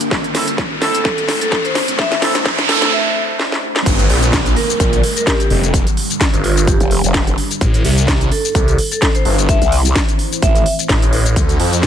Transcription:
Already playing: riser
0.01 closed hi-hat
0.11 A3 E4 C5, kick, snare
0.24 closed hi-hat
0.35 C4 E4 A4, snare, open hi-hat
0.48 closed hi-hat
0.58 kick, snare
0.82 C4 E4 A4, snare, open hi-hat
0.95 closed hi-hat
1.05 kick, snare
1.18 closed hi-hat
1.28 snare, open hi-hat
1.41 A4, closed hi-hat
1.52 kick, snare
1.65 C5, closed hi-hat
1.75 snare, open hi-hat
1.88 closed hi-hat
1.99 E5, kick, snare, noise sweep
2.12 snare, closed hi-hat
2.22 C4 E4 A4, snare, open hi-hat
2.35 snare, closed hi-hat
2.46 kick, snare
2.59 snare, closed hi-hat
2.69 C4 E4 A4, snare, open hi-hat
2.82 snare, closed hi-hat
2.93 E5
3.06 E5
3.39 snare
3.52 snare
3.76 snare
3.86 G1 G3 D4 A#4, kick, closed hi-hat, crash, downlifter, shaker
3.99 closed hi-hat, shaker
4.10 A#1, open hi-hat
4.22 closed hi-hat, shaker
4.33 kick, snare, closed hi-hat, shaker
4.46 closed hi-hat, shaker
4.56 A#4, open hi-hat
4.70 shaker
4.80 A#1, kick, closed hi-hat, shaker
4.93 closed hi-hat, shaker
5.03 open hi-hat
5.16 A#4, closed hi-hat, shaker
5.27 G4, kick, snare, closed hi-hat, shaker
5.40 G4, closed hi-hat, shaker
5.50 F1, open hi-hat
5.63 closed hi-hat, shaker
5.74 kick, closed hi-hat, shaker
5.87 closed hi-hat, shaker
5.97 open hi-hat
6.10 closed hi-hat, shaker
6.21 kick, snare, closed hi-hat, shaker
6.34 G1, closed hi-hat, shaker
6.44 F4, open hi-hat
6.58 shaker
6.67 G4, kick, closed hi-hat, shaker
6.80 F1 G4, closed hi-hat, shaker
6.91 open hi-hat
7.04 F1, closed hi-hat, shaker
7.14 kick, snare, closed hi-hat, shaker
7.27 closed hi-hat, shaker
7.38 open hi-hat
7.51 closed hi-hat, shaker
7.61 A1 A3 E4 C5, kick, closed hi-hat, shaker
7.74 closed hi-hat, shaker
7.85 C2, open hi-hat
7.98 closed hi-hat, shaker
8.08 kick, snare, closed hi-hat, shaker
8.21 closed hi-hat, shaker
8.32 A4, open hi-hat
8.45 shaker
8.55 C2, kick, closed hi-hat, shaker
8.68 closed hi-hat, shaker
8.78 open hi-hat
8.91 A4, closed hi-hat, shaker
9.02 kick, snare, closed hi-hat, shaker
9.15 C5, closed hi-hat, shaker
9.25 G1, open hi-hat
9.38 closed hi-hat, shaker
9.49 E5, kick, closed hi-hat, shaker
9.62 C2, closed hi-hat, shaker
9.72 open hi-hat
9.85 closed hi-hat, shaker
9.96 kick, snare, closed hi-hat, shaker
10.09 closed hi-hat, shaker
10.19 open hi-hat
10.33 shaker
10.42 A1 E5, kick, closed hi-hat, shaker
10.55 E5, closed hi-hat, shaker
10.66 open hi-hat
10.79 closed hi-hat, shaker
10.89 A1, kick, snare, closed hi-hat, shaker
11.02 closed hi-hat, shaker
11.13 open hi-hat
11.26 closed hi-hat, shaker
11.36 D2 F4 D5, kick, closed hi-hat, shaker
11.49 closed hi-hat, shaker
11.60 F2, open hi-hat
11.73 closed hi-hat, shaker
11.83 kick, snare, closed hi-hat

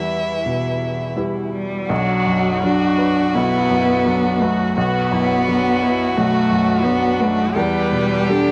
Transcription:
Already playing: E2 E3 G3 E4 B4 E5
0.46 B2
1.16 G3 E4 B4
1.53 G3
1.90 B1 F#3 D4 F#4
2.27 F#2
2.63 F#3 D4 F#4
2.98 B4
3.35 B1 B3 E4
3.70 F#2
4.06 F#3 D4
4.41 A3 F#4 B4
4.76 B1 B3 F#4
5.11 F#2 E4
5.46 F#3 D4
5.81 E4 B4
6.17 B1 A3 F#4
6.51 F#2
6.84 F#3 B3 D4
7.21 A3 B4
7.55 E2 G3 G4 B4
7.93 B2
8.29 G3 D4 A4

